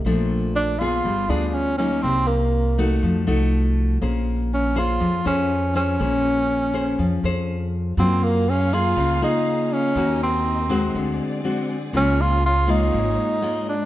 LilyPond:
<<
  \new Staff \with { instrumentName = "String section" } { \time 4/4 \key bes \minor \tempo 4 = 121 << { r1 | r1 | r1 | r1 |
<bes f''>1 | <ees' ees''>2 <c' d''>2 | <bes f' des''>1 | } \\ { r1 | r1 | r1 | r1 |
aes'1 | bes'2 gis'2~ | gis'1 | } >> }
  \new Staff \with { instrumentName = "Nylon-string guitar" } { \time 4/4 \key bes \minor << { <f a d'>4. <ces' f' aes'>4 <b f' aes'>4 <ges bes ees'>8~ | <ges bes ees'>4. <a ees' ges'>4 <a ees' ges'>4. | <des' aes' c''>4 r8 <des' aes' c''>4 <des' aes' c''>4 <des' aes' c''>8 | <des' aes' c''>4. <des' aes' c''>4 <des' aes' c''>4. |
<bes f' aes'>4 r8 <bes f' aes'>4 <bes f' aes'>4. | <bes ges'>4. <aes c' ges'>4. <gis c' fis'>8 r8 | <aes bes f'>4 r8 <aes bes f'>4. <aes bes f'>8 r8 | } \\ { bes,2 g2 | c2 f2 | bes2 f2 | bes2 f2 |
ges2 des2 | ees2 d2 | des2 aes,2 | } >> }
  \new Staff \with { instrumentName = "Tenor saxophone" } { \time 4/4 \key bes \minor r4 d'8 f'4 d'16. d'32 des'8 des'8 | c'8 bes4. r2 | r4 des'8 f'4 des'4 des'8~ | des'2.~ des'8 r8 |
c'8 bes8 des'8 f'4 ees'4 des'8~ | des'8 c'2 r4. | des'8 f'8 f'8 ees'2 d'8 | }
  \new Staff \with { instrumentName = "Upright bass" } { \clef bass \time 4/4 \key bes \minor bes,,2 g,,8 d,4. | c,2 f,8 c,4. | bes,,2 f,8 f,4. | bes,,2 f,8 f,4. |
ges,2 des,8 r4. | ees,2 d,8 r4. | des,2 aes,,8 r4. | }
>>